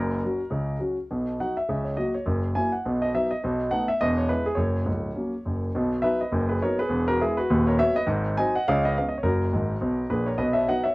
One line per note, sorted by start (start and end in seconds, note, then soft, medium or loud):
0.00 0.17 F#1 medium
0.00 0.17 F#2 medium
0.00 0.79 A#4 medium
0.24 0.39 F#3 soft
0.24 0.40 C#4 soft
0.24 0.40 F#4 soft
0.50 0.75 C#2 medium
0.50 0.76 C#3 medium
0.80 0.96 F#3 soft
0.80 0.96 C#4 soft
0.80 0.96 F#4 soft
1.11 1.35 B1 soft
1.11 1.35 B2 medium
1.40 1.56 F#3 soft
1.40 1.56 D#4 soft
1.40 1.56 F#4 soft
1.40 1.56 F#5 medium
1.57 1.85 E5 medium
1.69 1.93 C#2 medium
1.69 1.93 C#3 medium
1.85 1.96 C#5 soft
1.97 2.13 F#3 soft
1.97 2.13 A#3 soft
1.97 2.14 F#4 soft
1.97 2.13 D#5 medium
2.15 2.26 C#5 medium
2.26 2.51 F#1 medium
2.26 2.50 F#2 medium
2.55 2.71 F#3 soft
2.55 2.71 A#3 soft
2.55 2.72 E4 soft
2.55 2.72 G#5 medium
2.72 3.01 F#5 soft
2.86 3.09 B1 medium
2.86 3.10 B2 medium
3.02 3.13 D#5 medium
3.14 3.30 F#3 soft
3.14 3.31 B3 soft
3.14 3.31 D#4 soft
3.14 3.31 E5 medium
3.31 3.42 D#5 medium
3.44 3.68 B1 medium
3.44 3.67 B2 medium
3.71 3.88 A3 soft
3.71 3.88 B3 soft
3.71 3.88 D#4 soft
3.71 3.88 F#5 medium
3.88 4.00 E5 medium
4.01 4.26 E1 medium
4.01 4.25 E2 medium
4.01 4.17 D#5 medium
4.18 4.29 C#5 medium
4.28 4.44 G#3 soft
4.28 4.45 B3 soft
4.28 4.45 E4 soft
4.28 4.46 B4 medium
4.46 4.58 G#4 medium
4.55 4.80 F#1 medium
4.55 4.81 F#2 medium
4.55 5.61 C#5 medium
4.85 5.09 C#1 soft
4.85 5.09 C#2 medium
5.15 5.32 F#3 soft
5.15 5.33 A#3 soft
5.15 5.32 C#4 soft
5.45 5.69 F#1 soft
5.45 5.69 F#2 soft
5.75 6.00 B1 medium
5.75 5.99 B2 medium
6.02 6.19 F#3 soft
6.02 6.19 B3 soft
6.02 6.19 D#4 soft
6.02 6.19 B4 medium
6.02 6.20 E5 medium
6.21 6.47 B4 soft
6.21 6.50 D#5 medium
6.31 6.57 F#1 medium
6.31 6.57 F#2 medium
6.49 6.61 G#4 soft
6.49 6.61 B4 medium
6.62 6.78 F#3 soft
6.62 6.78 B3 soft
6.62 6.79 D#4 soft
6.62 6.78 A#4 medium
6.62 6.79 C#5 medium
6.79 7.07 G#4 medium
6.79 7.08 B4 medium
6.89 7.14 E1 medium
6.89 7.15 E2 medium
7.08 7.19 F#4 medium
7.08 7.20 A#4 medium
7.21 7.37 G#3 soft
7.21 7.37 B3 soft
7.21 7.36 E4 medium
7.21 7.38 G#4 medium
7.37 7.65 F#4 medium
7.37 7.66 B4 medium
7.50 7.75 D#1 medium
7.50 7.74 D#2 medium
7.67 7.78 A#4 medium
7.67 7.78 C#5 medium
7.79 7.95 F#3 soft
7.79 7.95 B3 soft
7.79 7.95 F#4 soft
7.79 7.95 C#5 medium
7.79 7.96 E5 loud
7.96 8.07 B4 medium
7.96 8.07 D#5 medium
8.07 8.32 G#1 medium
8.07 8.32 G#2 medium
8.37 8.54 F#3 soft
8.37 8.54 C4 soft
8.37 8.54 D#4 medium
8.37 8.54 D#5 medium
8.37 8.54 G#5 medium
8.55 8.66 D#5 medium
8.55 8.66 F#5 medium
8.68 8.92 C#2 medium
8.68 8.92 C#3 medium
8.68 8.83 C#5 medium
8.68 8.84 F5 loud
8.85 8.96 B4 soft
8.85 8.96 D#5 medium
8.98 9.13 G#3 soft
8.98 9.13 B3 soft
8.98 9.13 C#4 soft
8.98 9.06 F5 medium
9.09 9.16 D#5 medium
9.18 9.25 C#5 medium
9.23 9.48 F#1 medium
9.23 9.48 F#2 medium
9.23 10.07 F#4 medium
9.23 10.11 A#4 medium
9.53 9.75 G#1 medium
9.53 9.75 G#2 medium
9.81 10.03 B1 medium
9.81 10.03 B2 medium
10.10 10.32 A#1 medium
10.10 10.32 A#2 medium
10.10 10.27 G#4 medium
10.10 10.27 B4 medium
10.27 10.39 A#4 medium
10.27 10.39 C#5 medium
10.38 10.63 B1 medium
10.38 10.64 B2 medium
10.38 10.55 B4 medium
10.38 10.56 D#5 medium
10.53 10.67 C#5 medium
10.53 10.67 E5 medium
10.69 10.85 F#3 soft
10.69 10.85 B3 soft
10.69 10.85 D#4 soft
10.69 10.85 D#5 medium
10.69 10.86 F#5 medium
10.84 10.95 C#5 medium
10.84 10.95 E5 medium